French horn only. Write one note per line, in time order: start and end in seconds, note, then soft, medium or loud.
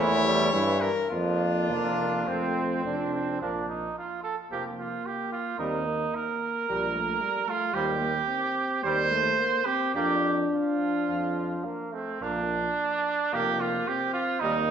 0.00 0.54 A3 medium
0.52 0.90 G3 medium
1.10 2.30 A#3 medium
2.29 3.14 A3 medium
4.51 5.55 A#3 medium
5.59 5.88 C4 medium
5.86 6.68 A#3 medium
6.69 6.95 G3 medium
6.96 7.23 A3 medium
7.21 7.47 G3 medium
7.47 7.75 A3 medium
7.74 8.00 G3 medium
8.00 8.13 A#3 medium
8.28 8.85 C4 medium
8.83 9.13 G3 medium
9.11 9.40 A3 medium
9.39 9.66 A#3 medium
9.67 9.97 C4 medium
9.95 11.93 D4 medium
13.34 13.84 A#3 medium
13.88 14.41 C4 medium
14.43 14.71 A#3 medium